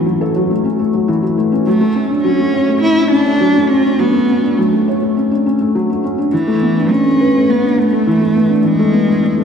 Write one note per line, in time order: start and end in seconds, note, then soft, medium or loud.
0.00 1.08 E3 medium
0.00 0.06 F#3 loud
0.00 0.21 F#3 loud
0.00 0.50 A3 medium
0.00 0.65 C#4 medium
0.06 0.20 F#3 medium
0.21 0.29 A4 medium
0.36 0.49 F#3 medium
0.50 0.64 A3 medium
0.65 0.78 C#4 medium
0.79 0.87 A3 medium
0.94 1.07 F#3 medium
1.08 1.22 E3 loud
1.23 1.37 F#3 medium
1.38 1.51 A3 medium
1.52 1.60 C#4 medium
1.66 1.80 F#3 medium
1.66 2.21 A3 loud
1.81 1.89 A3 loud
1.95 2.09 C#4 medium
2.10 2.24 D4 medium
2.24 2.38 F#3 medium
2.24 2.78 C#4 loud
2.39 2.53 A3 medium
2.54 2.62 C#5 medium
2.68 2.82 A3 medium
2.82 2.97 C#4 medium
2.82 3.09 E4 loud
2.97 3.11 D4 medium
3.11 3.20 C#4 medium
3.11 3.71 D4 loud
3.26 3.40 A3 medium
3.41 3.55 F#3 loud
3.56 3.70 A3 medium
3.70 4.01 C#4 loud
3.70 3.84 C#4 medium
3.85 3.93 D4 medium
4.00 4.13 F#3 medium
4.00 4.59 B3 loud
4.14 4.22 A3 loud
4.29 4.43 C#4 medium
4.43 4.57 D4 medium
4.58 4.72 F#3 medium
4.58 5.16 A3 medium
4.73 4.86 A3 medium
4.88 4.96 C#5 medium
5.03 5.16 A3 medium
5.17 5.30 C#4 medium
5.31 5.45 D4 medium
5.46 5.54 C#4 medium
5.61 5.74 A3 medium
5.75 5.89 F#3 medium
5.90 6.03 A3 medium
6.04 6.17 C#4 medium
6.18 6.26 D4 medium
6.33 6.93 E3 loud
6.33 6.47 E3 medium
6.48 6.56 A3 loud
6.62 6.76 B3 medium
6.77 6.90 D4 medium
6.91 7.52 C#4 loud
6.91 7.05 D4 medium
7.06 7.19 A3 medium
7.20 7.28 B4 medium
7.34 7.48 A3 medium
7.49 7.63 B3 medium
7.49 7.81 B3 loud
7.64 7.77 D4 medium
7.78 8.68 A3 loud
7.78 7.86 B3 medium
7.93 8.06 A3 medium
8.07 8.21 E3 loud
8.21 8.35 A3 medium
8.36 8.50 B3 medium
8.50 8.59 D4 medium
8.64 8.79 E3 medium
8.64 9.44 G#3 loud
8.79 8.88 A3 loud
8.94 9.08 B3 medium
9.08 9.21 D4 medium
9.22 9.37 D4 medium
9.37 9.44 A3 medium